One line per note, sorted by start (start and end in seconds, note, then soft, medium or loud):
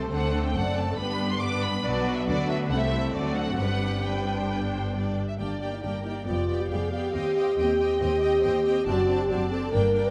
0.00 0.12 C2 soft
0.00 0.11 C3 soft
0.00 0.10 A3 soft
0.00 0.98 A3 medium
0.00 0.98 C4 soft
0.00 0.98 C4 medium
0.00 0.10 A4 soft
0.00 0.53 C5 soft
0.11 0.54 D2 soft
0.11 0.54 D3 medium
0.11 0.96 A3 soft
0.11 0.53 A4 soft
0.11 0.44 F#5 medium
0.45 0.55 G5 medium
0.54 0.98 F#1 soft
0.54 0.98 F#2 soft
0.54 0.97 A4 soft
0.54 0.97 D5 soft
0.54 0.76 F#5 medium
0.77 0.98 A5 medium
0.97 1.83 G1 medium
0.97 1.83 G2 medium
0.97 1.84 G3 medium
0.97 1.39 B3 soft
0.97 2.71 B3 medium
0.97 1.39 D4 soft
0.97 1.41 G4 soft
0.97 1.40 B4 soft
0.97 1.30 B5 medium
1.31 1.41 C6 medium
1.40 1.83 B3 medium
1.40 1.83 D4 medium
1.40 1.83 B4 soft
1.40 1.62 D6 medium
1.62 1.84 B5 medium
1.83 2.25 B1 medium
1.83 2.24 B2 medium
1.83 2.70 F#3 medium
1.83 2.25 F#3 medium
1.83 2.25 D4 medium
1.83 2.24 F#4 medium
1.83 2.25 B4 medium
1.83 2.16 D5 medium
2.16 2.27 E5 medium
2.27 2.71 D2 medium
2.27 2.71 D3 medium
2.27 2.71 F#3 medium
2.27 2.71 D4 medium
2.27 2.70 F#4 medium
2.27 2.70 B4 medium
2.27 2.49 D5 medium
2.49 2.57 E5 medium
2.70 3.15 C2 medium
2.70 3.15 C3 medium
2.70 3.15 A3 medium
2.70 3.14 A3 medium
2.70 4.46 C4 medium
2.70 3.14 C4 medium
2.70 3.14 E4 soft
2.70 3.13 A4 medium
2.70 2.82 F#5 medium
2.82 3.15 E5 medium
3.15 3.59 D2 medium
3.15 3.59 D3 medium
3.15 3.60 F#3 medium
3.15 3.59 A3 medium
3.15 3.59 C4 medium
3.15 3.60 F#4 soft
3.15 3.59 A4 soft
3.15 3.37 D5 medium
3.37 3.58 F#5 medium
3.59 5.16 G1 medium
3.59 5.16 G2 medium
3.59 5.17 G3 medium
3.59 4.04 G3 soft
3.59 4.04 D4 soft
3.59 4.05 G4 soft
3.59 4.03 B4 soft
3.59 4.04 F#5 medium
4.04 5.17 G3 soft
4.04 5.17 D4 soft
4.04 4.36 B4 soft
4.04 5.18 G5 medium
4.39 4.50 C5 soft
4.50 5.17 B3 soft
4.50 4.58 B4 medium
4.72 4.94 C5 soft
4.94 5.28 D5 soft
5.28 5.33 E5 soft
5.39 5.76 G1 soft
5.39 5.76 G2 soft
5.39 5.60 A#3 soft
5.39 5.70 D4 soft
5.39 5.60 G4 soft
5.39 5.60 D5 soft
5.39 5.81 D5 soft
5.39 5.60 G5 soft
5.61 5.82 A#3 soft
5.61 5.82 G4 soft
5.61 5.82 D5 soft
5.61 5.82 G5 soft
5.73 5.78 D#4 soft
5.82 6.20 G1 soft
5.82 6.20 G2 soft
5.82 6.03 A#3 soft
5.82 6.04 D4 soft
5.82 6.04 G4 soft
5.82 6.26 A#4 soft
5.82 6.04 D5 soft
5.82 6.04 G5 soft
6.05 6.26 A#3 soft
6.05 6.15 D#4 soft
6.05 6.25 G4 soft
6.05 6.25 D5 soft
6.05 6.25 G5 soft
6.26 6.63 F1 soft
6.26 6.63 F2 soft
6.26 6.48 B3 soft
6.26 6.58 F4 soft
6.26 6.48 G4 soft
6.26 6.48 D5 soft
6.26 6.69 D5 soft
6.26 6.47 G5 soft
6.48 6.70 B3 soft
6.48 6.69 G4 soft
6.48 6.69 D5 soft
6.48 6.69 G5 soft
6.61 6.71 G4 soft
6.70 7.07 F1 soft
6.70 7.07 F2 soft
6.70 6.91 B3 soft
6.70 6.91 G4 soft
6.70 6.92 G#4 medium
6.70 6.91 D5 soft
6.70 7.56 F5 soft
6.70 6.91 G5 soft
6.91 7.14 B3 soft
6.91 7.12 G4 soft
6.91 7.13 G4 soft
6.91 7.14 D5 soft
6.91 7.13 G5 soft
7.14 7.50 D#2 soft
7.14 7.35 C4 soft
7.14 8.83 G4 medium
7.14 7.35 G4 soft
7.14 7.34 D#5 soft
7.14 7.34 G5 soft
7.35 7.56 C4 soft
7.35 7.56 G4 soft
7.35 7.57 D#5 soft
7.35 7.57 G5 soft
7.57 7.94 D#2 soft
7.57 7.78 C4 soft
7.57 7.78 G4 soft
7.57 7.78 D#5 soft
7.57 7.78 G5 soft
7.57 8.00 G5 soft
7.79 7.99 C4 soft
7.79 7.99 G4 soft
7.79 7.99 D#5 soft
7.79 7.99 G5 soft
8.00 8.37 D#2 medium
8.00 8.21 C4 soft
8.00 8.21 G4 soft
8.00 8.21 D#5 soft
8.00 8.44 D#5 soft
8.00 8.21 G5 soft
8.22 8.42 C4 soft
8.22 8.42 G4 soft
8.22 8.42 D#5 soft
8.22 8.42 G5 soft
8.43 8.80 D#2 medium
8.43 8.64 C4 soft
8.43 8.64 G4 soft
8.43 8.87 C5 soft
8.43 8.64 D#5 soft
8.43 8.64 G5 soft
8.65 8.85 C4 soft
8.65 8.86 G4 soft
8.65 8.86 D#5 soft
8.65 8.86 G5 soft
8.86 9.23 F#1 medium
8.86 9.23 F#2 medium
8.86 9.06 C4 medium
8.86 9.06 D4 soft
8.86 9.18 F#4 medium
8.86 9.28 D5 medium
8.86 9.07 D5 soft
8.86 9.07 A5 soft
9.08 9.29 C4 soft
9.08 9.29 D4 soft
9.08 9.28 D5 soft
9.08 9.28 A5 soft
9.20 9.30 G4 medium
9.29 9.66 F#1 medium
9.29 9.66 F#2 medium
9.29 9.50 C4 soft
9.29 9.50 D4 soft
9.29 9.52 F#4 medium
9.29 9.49 D5 soft
9.29 9.72 D5 medium
9.29 9.49 A5 soft
9.51 9.73 C4 soft
9.51 9.72 D4 soft
9.51 9.74 A4 medium
9.51 9.72 D5 soft
9.51 9.73 A5 soft
9.73 10.10 G1 medium
9.73 10.10 G2 medium
9.73 9.94 A#3 soft
9.73 9.94 D4 soft
9.73 10.06 A#4 medium
9.73 10.11 A#4 soft
9.73 9.94 D5 soft
9.73 9.93 G5 soft
9.95 10.11 A#3 soft
9.95 10.11 D4 soft
9.95 10.11 D5 soft
9.95 10.11 G5 soft
10.07 10.11 C5 medium